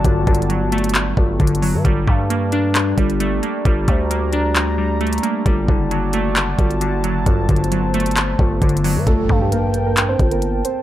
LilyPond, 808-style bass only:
\new Staff \with { instrumentName = "808-style bass" } { \clef bass \time 4/4 \key g \minor \tempo 4 = 133 g,,8 g,,2 g,,8 g,,8. g,16 | g,,8 g,2 g,,4 r8 | g,,8 d,2. r8 | g,,8 fis,,2 g,,8. fis,,8. |
g,,8 g,,2 g,,8 g,,8. g,16 | g,,8 g,2 g,,4 r8 | }